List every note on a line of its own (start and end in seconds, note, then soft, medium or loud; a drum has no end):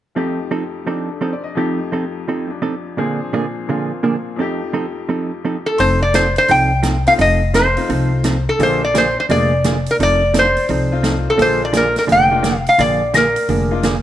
0.15 1.53 F2 medium
0.15 0.83 F3 medium
0.15 0.38 F3 soft
0.15 1.54 A3 medium
0.15 0.38 C4 medium
0.15 1.54 D#4 medium
0.15 0.39 D#4 soft
0.15 1.55 G4 medium
0.15 0.39 A4 medium
0.51 0.63 F3 medium
0.51 0.63 C4 medium
0.51 0.63 D#4 medium
0.51 0.63 A4 medium
0.84 1.54 F3 soft
0.84 1.08 F3 medium
0.84 1.09 C4 medium
0.84 1.58 D4 soft
0.84 1.09 D#4 medium
0.84 1.09 A4 medium
1.10 1.28 A4 soft
1.21 1.33 F3 medium
1.21 1.33 C4 medium
1.21 1.33 D#4 medium
1.21 1.34 A4 medium
1.21 1.43 C5 soft
1.33 1.51 D5 medium
1.44 1.62 D#5 medium
1.55 2.97 F2 medium
1.55 2.46 F3 medium
1.55 1.79 F3 medium
1.55 2.97 A3 medium
1.55 1.79 C4 medium
1.55 2.97 D#4 medium
1.55 1.79 D#4 medium
1.55 2.98 G4 medium
1.55 1.79 A4 medium
1.92 2.04 F3 medium
1.92 2.04 C4 medium
1.92 2.04 D#4 medium
1.92 2.04 A4 medium
2.28 2.50 F3 medium
2.28 2.50 C4 medium
2.28 2.50 D#4 medium
2.28 2.50 A4 medium
2.47 2.96 F3 soft
2.47 2.97 D4 soft
2.62 2.74 F3 medium
2.62 2.74 C4 medium
2.62 2.74 D#4 medium
2.62 2.74 A4 medium
2.97 3.19 A#2 medium
2.97 4.38 A#2 medium
2.97 3.20 D3 medium
2.97 3.65 F3 medium
2.97 3.20 F3 medium
2.97 3.20 A#3 medium
2.97 3.67 C4 medium
2.97 3.20 D4 medium
2.97 4.39 D4 medium
2.97 3.20 G#4 medium
2.97 4.39 G#4 medium
3.33 3.45 A#2 medium
3.33 3.45 D3 medium
3.33 3.45 F3 medium
3.33 3.45 A#3 medium
3.33 3.45 D4 medium
3.33 3.45 G#4 medium
3.67 3.90 A#2 medium
3.67 3.90 D3 medium
3.67 4.36 F3 soft
3.67 3.90 F3 medium
3.67 4.38 A#3 soft
3.67 3.91 A#3 medium
3.67 4.39 C4 soft
3.67 3.91 D4 medium
3.67 4.39 F4 soft
3.67 3.91 G#4 medium
4.03 4.15 A#2 medium
4.03 4.15 D3 medium
4.03 4.15 F3 medium
4.03 4.15 A#3 medium
4.03 4.15 D4 medium
4.03 4.15 G#4 medium
4.36 5.78 F2 medium
4.36 5.78 F3 medium
4.36 4.60 F3 medium
4.36 5.79 A3 medium
4.36 4.60 C4 medium
4.36 5.79 D#4 medium
4.36 4.61 D#4 medium
4.40 5.80 G4 medium
4.40 4.61 A4 medium
4.73 4.85 F3 medium
4.73 4.85 C4 medium
4.73 4.85 D#4 medium
4.73 4.85 A4 medium
5.09 5.30 F3 medium
5.09 5.31 C4 medium
5.09 5.31 D#4 medium
5.09 5.31 A4 medium
5.45 5.56 F3 medium
5.45 5.56 C4 medium
5.45 5.56 D#4 medium
5.45 5.56 A4 medium
5.66 5.79 A4 medium
5.78 6.35 F1 medium
5.78 6.01 F3 medium
5.78 6.01 C4 medium
5.78 6.01 D#4 medium
5.78 6.01 A4 medium
5.78 6.02 C5 medium
5.78 open hi-hat soft
6.02 6.15 D5 medium
6.14 6.25 F3 medium
6.14 6.26 C4 medium
6.14 6.26 D#4 medium
6.14 6.26 A4 medium
6.14 6.35 C5 medium
6.14 snare medium
6.14 closed hi-hat soft
6.36 6.50 C5 medium
6.36 open hi-hat soft
6.48 7.05 C2 medium
6.48 6.70 F3 medium
6.48 6.71 C4 medium
6.48 6.71 D#4 medium
6.48 6.71 A4 medium
6.48 7.04 G5 medium
6.48 open hi-hat soft
6.83 6.95 F3 medium
6.83 6.95 C4 medium
6.83 6.95 D#4 medium
6.83 6.95 A4 medium
6.83 snare medium
6.83 closed hi-hat medium
7.06 7.18 A3 medium
7.06 7.18 C4 medium
7.06 7.18 D#4 medium
7.06 7.18 F4 medium
7.06 7.13 F5 medium
7.06 open hi-hat soft
7.18 7.75 F1 medium
7.18 7.41 F3 medium
7.18 7.41 C4 medium
7.18 7.41 D#4 medium
7.18 7.41 A4 medium
7.18 7.56 D#5 loud
7.18 open hi-hat soft
7.54 7.65 F3 medium
7.54 7.66 C4 medium
7.54 7.66 D#4 medium
7.54 7.66 A4 medium
7.54 8.43 C5 medium
7.54 snare medium
7.54 closed hi-hat medium
7.77 8.22 A3 medium
7.77 8.22 C4 medium
7.77 8.22 D#4 medium
7.77 8.22 F4 medium
7.77 open hi-hat soft
7.89 8.46 C2 medium
7.89 8.11 F3 medium
7.89 8.11 C4 medium
7.89 8.11 D#4 medium
7.89 8.12 A4 medium
7.89 open hi-hat soft
8.24 8.36 F3 medium
8.24 8.36 C4 medium
8.24 8.36 D#4 medium
8.24 8.36 A4 medium
8.24 snare medium
8.24 closed hi-hat soft
8.49 8.61 A4 medium
8.59 9.15 A#1 medium
8.59 8.81 D3 medium
8.59 8.81 F3 medium
8.59 8.80 G#3 medium
8.59 8.81 A#3 medium
8.59 8.80 A#3 medium
8.59 8.81 D4 medium
8.59 8.80 D4 medium
8.59 8.80 F4 medium
8.59 8.82 G#4 medium
8.59 8.84 C5 loud
8.59 open hi-hat soft
8.85 8.96 D5 medium
8.94 9.06 D3 medium
8.94 9.06 F3 medium
8.94 9.06 A#3 medium
8.94 9.06 D4 medium
8.94 9.06 G#4 medium
8.94 9.19 C5 medium
8.94 snare medium
8.94 closed hi-hat soft
9.20 9.25 C5 medium
9.29 9.85 F1 medium
9.29 9.51 D3 medium
9.29 9.51 F3 medium
9.29 9.50 G#3 medium
9.29 9.50 A#3 medium
9.29 9.51 A#3 medium
9.29 9.52 D4 medium
9.29 9.50 D4 medium
9.29 9.50 G#4 medium
9.29 9.52 G#4 medium
9.29 9.88 D5 medium
9.29 open hi-hat soft
9.64 9.76 D3 medium
9.64 9.76 F3 medium
9.64 9.76 A#3 medium
9.64 9.77 D4 medium
9.64 9.76 G#4 medium
9.64 snare medium
9.64 closed hi-hat medium
9.86 open hi-hat soft
9.91 9.96 A#4 medium
9.99 10.55 F1 medium
9.99 10.21 F3 medium
9.99 10.22 C4 medium
9.99 10.22 D#4 medium
9.99 10.22 A4 medium
9.99 10.37 D5 loud
9.99 open hi-hat soft
10.34 10.46 F3 medium
10.34 10.46 C4 medium
10.34 10.46 D#4 medium
10.34 10.46 A4 medium
10.34 snare medium
10.34 closed hi-hat soft
10.39 11.32 C5 medium
10.57 open hi-hat soft
10.69 11.25 C2 medium
10.69 10.91 F3 medium
10.69 10.91 C4 medium
10.69 10.91 D#4 medium
10.69 10.92 A4 medium
10.69 open hi-hat soft
10.92 11.37 A3 medium
10.92 11.37 C4 medium
10.92 11.37 D#4 medium
10.92 11.37 F4 medium
11.03 11.15 F3 medium
11.03 11.15 C4 medium
11.03 11.16 D#4 medium
11.03 11.16 A4 medium
11.03 snare medium
11.03 closed hi-hat soft
11.30 11.41 A4 medium
11.37 11.95 A#1 medium
11.37 11.60 D3 medium
11.37 11.60 F3 medium
11.37 11.92 G#3 medium
11.37 11.61 A#3 medium
11.37 11.92 A#3 medium
11.37 11.61 D4 medium
11.37 11.93 D4 soft
11.37 11.93 F4 medium
11.37 11.61 G#4 medium
11.37 open hi-hat soft
11.42 11.64 C5 loud
11.65 11.76 D5 medium
11.73 11.85 D3 medium
11.73 11.85 F3 medium
11.73 11.85 A#3 medium
11.73 11.85 D4 medium
11.73 11.85 G#4 medium
11.73 snare medium
11.73 closed hi-hat medium
11.77 11.97 A#4 medium
11.96 12.04 A#4 medium
11.96 snare soft
11.96 open hi-hat soft
12.07 12.65 F1 medium
12.07 12.30 D3 medium
12.07 12.30 F3 medium
12.07 12.30 A#3 medium
12.07 12.30 D4 medium
12.07 12.30 G#4 medium
12.07 open hi-hat soft
12.12 12.58 G5 medium
12.31 12.43 G#3 medium
12.31 12.43 A#3 medium
12.31 12.43 D4 medium
12.31 12.43 F4 medium
12.43 12.55 D3 medium
12.43 12.55 F3 medium
12.43 12.55 A#3 medium
12.43 12.55 D4 medium
12.43 12.55 G#4 medium
12.43 snare medium
12.43 closed hi-hat soft
12.58 12.69 F5 medium
12.66 12.81 F5 medium
12.66 open hi-hat soft
12.78 13.35 A#1 medium
12.78 13.01 D3 medium
12.78 13.01 F3 medium
12.78 13.01 A#3 medium
12.78 13.01 D4 medium
12.78 13.01 G#4 medium
12.78 13.12 D5 medium
12.78 open hi-hat soft
13.14 13.25 D3 medium
13.14 13.26 F3 medium
13.14 13.26 A#3 medium
13.14 13.26 D4 medium
13.14 13.26 G#4 medium
13.14 14.02 A#4 medium
13.14 snare medium
13.14 closed hi-hat soft
13.36 open hi-hat soft
13.49 14.02 F1 medium
13.49 13.71 D3 medium
13.49 13.71 F3 medium
13.49 13.71 A#3 medium
13.49 13.71 D4 medium
13.49 13.71 G#4 medium
13.49 open hi-hat soft
13.71 13.82 G#3 medium
13.71 13.83 A#3 medium
13.71 13.83 D4 medium
13.71 13.83 F4 medium
13.83 13.95 D3 medium
13.83 13.95 F3 medium
13.83 13.96 A#3 medium
13.83 13.96 D4 medium
13.83 13.96 G#4 medium
13.83 snare medium
13.83 closed hi-hat soft